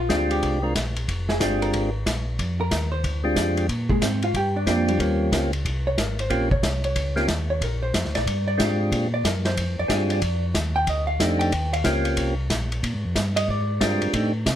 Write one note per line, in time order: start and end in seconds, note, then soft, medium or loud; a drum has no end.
0.00 0.28 F4 medium
0.09 0.41 D2 medium
0.09 0.59 G#3 medium
0.09 0.59 C4 medium
0.09 0.59 D4 medium
0.09 0.59 F4 medium
0.09 0.59 G4 medium
0.09 kick soft
0.09 snare medium
0.09 hi-hat pedal soft
0.09 ride medium
0.31 0.61 G4 medium
0.31 ride soft
0.43 0.74 C2 medium
0.43 kick soft
0.43 ride medium
0.62 0.73 G#3 medium
0.62 0.74 C4 medium
0.62 0.74 D4 medium
0.62 0.74 F4 medium
0.62 0.74 A#4 medium
0.75 1.07 A#1 medium
0.75 kick soft
0.75 snare medium
0.75 hi-hat pedal soft
0.75 ride medium
0.96 ride soft
1.08 1.40 F1 medium
1.08 kick soft
1.08 ride medium
1.29 1.59 G#4 medium
1.29 snare medium
1.40 1.72 G1 medium
1.40 1.90 G#3 soft
1.40 1.90 C4 soft
1.40 1.90 D4 soft
1.40 1.90 F4 soft
1.40 1.91 G4 medium
1.40 kick soft
1.40 snare medium
1.40 hi-hat pedal medium
1.40 ride medium
1.62 1.92 A#4 medium
1.62 ride soft
1.73 2.05 G#1 medium
1.73 kick soft
1.73 ride medium
2.06 2.38 A#1 medium
2.06 kick soft
2.06 snare medium
2.06 hi-hat pedal medium
2.06 ride medium
2.39 2.71 F2 medium
2.39 kick soft
2.39 ride medium
2.61 2.90 A#4 medium
2.71 3.03 D#2 medium
2.71 kick soft
2.71 snare medium
2.71 hi-hat pedal medium
2.71 ride medium
2.92 3.22 C5 medium
3.04 3.36 D2 medium
3.04 kick soft
3.04 ride medium
3.24 3.66 G#3 medium
3.24 3.66 C4 medium
3.24 3.67 D4 medium
3.24 3.67 F4 medium
3.24 3.67 G4 medium
3.36 3.68 F2 medium
3.36 kick soft
3.36 snare medium
3.36 hi-hat pedal medium
3.36 ride medium
3.57 ride soft
3.69 4.01 A#2 medium
3.69 kick soft
3.69 ride medium
3.90 4.02 G#3 medium
3.90 4.02 G#4 medium
3.90 kick soft
4.01 4.33 G#2 medium
4.01 4.23 C4 medium
4.01 4.22 C5 medium
4.01 kick soft
4.01 snare medium
4.01 hi-hat pedal medium
4.01 ride medium
4.22 4.35 F4 medium
4.22 4.35 F5 medium
4.22 ride soft
4.34 4.66 G2 medium
4.34 4.56 G4 medium
4.34 4.56 G5 medium
4.34 kick soft
4.34 ride medium
4.56 4.68 D4 medium
4.56 4.67 D5 medium
4.67 4.99 F2 medium
4.67 4.89 A#3 medium
4.67 4.99 C4 medium
4.67 5.00 D4 soft
4.67 4.99 F4 soft
4.67 5.00 G4 medium
4.67 4.88 A#4 medium
4.67 kick soft
4.67 snare medium
4.67 hi-hat pedal medium
4.67 ride medium
4.88 5.30 G3 medium
4.88 5.30 G4 medium
4.88 ride soft
4.99 5.32 D#2 medium
4.99 5.31 A#3 medium
4.99 5.31 C4 medium
4.99 5.32 C#4 soft
4.99 5.32 F4 soft
4.99 5.32 G4 medium
4.99 kick soft
4.99 ride medium
5.32 5.64 C#2 medium
5.32 5.51 A#3 medium
5.32 5.51 C4 medium
5.32 5.52 C#4 medium
5.32 5.52 F4 medium
5.32 5.52 G4 medium
5.32 kick soft
5.32 snare medium
5.32 hi-hat pedal medium
5.32 ride medium
5.53 ride soft
5.65 5.97 C2 medium
5.65 kick soft
5.65 ride medium
5.87 5.98 C#5 medium
5.98 6.30 G#1 medium
5.98 6.19 A#4 medium
5.98 kick soft
5.98 snare medium
5.98 hi-hat pedal medium
5.98 ride medium
6.19 6.50 C5 medium
6.19 ride soft
6.30 6.62 A#1 medium
6.30 6.49 A#3 medium
6.30 6.49 C4 medium
6.30 6.49 C#4 medium
6.30 6.49 F4 medium
6.30 6.49 G4 medium
6.30 kick soft
6.30 ride medium
6.51 6.82 C#5 medium
6.51 kick medium
6.63 6.95 C2 medium
6.63 kick soft
6.63 snare medium
6.63 hi-hat pedal soft
6.63 ride medium
6.84 7.15 C#5 medium
6.84 ride soft
6.95 7.27 C#2 medium
6.95 kick soft
6.95 ride medium
7.16 7.27 A#3 medium
7.16 7.27 C4 medium
7.16 7.27 C#4 medium
7.16 7.27 F4 medium
7.16 7.27 G4 medium
7.16 snare soft
7.28 7.60 D#2 medium
7.28 kick soft
7.28 snare medium
7.28 hi-hat pedal soft
7.28 ride medium
7.50 7.61 C#5 medium
7.61 7.93 A#1 medium
7.61 7.83 A#4 medium
7.61 kick soft
7.61 ride medium
7.83 8.13 C5 medium
7.94 8.04 F2 loud
7.94 kick soft
7.94 snare medium
7.94 hi-hat pedal medium
7.94 ride medium
8.05 8.16 D2 medium
8.05 snare soft
8.15 8.26 A#1 medium
8.15 8.45 D5 medium
8.15 snare soft
8.15 ride soft
8.26 8.58 G2 medium
8.26 kick soft
8.26 ride medium
8.48 8.78 D5 loud
8.57 8.91 G#2 medium
8.57 9.08 G#3 medium
8.57 9.08 C4 medium
8.57 9.08 D4 soft
8.57 9.08 F4 medium
8.57 9.08 G4 medium
8.57 kick soft
8.57 snare medium
8.57 hi-hat pedal medium
8.57 ride medium
8.92 9.24 A#2 medium
8.92 kick soft
8.92 ride medium
9.14 9.25 D5 medium
9.24 9.56 F#2 medium
9.24 9.45 A#4 medium
9.24 kick soft
9.24 snare medium
9.24 hi-hat pedal medium
9.24 ride medium
9.45 9.76 C5 medium
9.45 snare medium
9.45 ride soft
9.57 9.76 F2 medium
9.57 kick soft
9.57 ride medium
9.79 9.85 F2 soft
9.79 10.09 D5 medium
9.88 10.21 G2 medium
9.88 10.22 C4 soft
9.88 10.22 D4 soft
9.88 10.22 F4 soft
9.88 10.22 G4 medium
9.88 10.22 G#4 medium
9.88 kick soft
9.88 snare medium
9.88 hi-hat pedal medium
9.88 ride medium
10.10 10.42 D5 medium
10.10 ride soft
10.22 10.54 F2 medium
10.22 kick soft
10.22 ride medium
10.55 10.87 D#2 medium
10.55 kick soft
10.55 snare medium
10.55 hi-hat pedal medium
10.55 ride medium
10.76 10.87 G5 loud
10.87 11.19 D2 medium
10.87 11.07 D#5 medium
10.87 kick soft
10.87 ride medium
11.07 11.38 F5 medium
11.19 11.52 F2 medium
11.19 11.53 A3 medium
11.19 11.53 C4 soft
11.19 11.53 D4 medium
11.19 11.53 D#4 soft
11.19 11.53 G4 medium
11.19 kick soft
11.19 snare medium
11.19 hi-hat pedal medium
11.19 ride medium
11.39 11.71 G5 medium
11.39 ride soft
11.52 11.84 D#2 medium
11.52 kick soft
11.52 ride medium
11.73 12.04 F5 medium
11.73 ride medium
11.84 12.17 C#2 loud
11.84 12.34 A#3 medium
11.84 12.34 C4 medium
11.84 12.35 C#4 medium
11.84 12.35 F4 medium
11.84 12.35 G4 medium
11.84 kick soft
11.84 snare medium
11.84 hi-hat pedal medium
11.84 ride medium
12.05 ride soft
12.17 12.49 C2 medium
12.17 kick soft
12.17 ride medium
12.50 12.82 A#1 medium
12.50 kick soft
12.50 snare medium
12.50 hi-hat pedal medium
12.50 ride medium
12.72 ride soft
12.83 12.94 A#2 medium
12.83 kick soft
12.83 ride medium
12.94 13.05 G#2 medium
13.05 13.15 F2 medium
13.15 13.47 G2 medium
13.15 kick soft
13.15 snare medium
13.15 hi-hat pedal medium
13.15 ride medium
13.36 13.48 D#5 loud
13.36 ride medium
13.48 13.80 G#2 medium
13.48 13.80 D5 medium
13.48 kick soft
13.80 14.00 G2 medium
13.80 14.13 G#3 medium
13.80 14.13 C4 medium
13.80 14.13 D4 medium
13.80 14.14 F4 medium
13.80 14.13 G4 medium
13.80 14.12 A#4 medium
13.80 kick soft
13.80 snare medium
13.80 hi-hat pedal medium
13.80 ride medium
14.02 14.08 G2 soft
14.02 ride soft
14.13 14.45 A2 medium
14.13 14.32 A3 medium
14.13 14.32 C4 medium
14.13 14.33 D4 medium
14.13 14.32 D#4 medium
14.13 14.33 G4 medium
14.13 kick soft
14.13 ride medium
14.46 14.56 C3 medium
14.46 kick soft
14.46 snare medium
14.46 hi-hat pedal medium
14.46 ride medium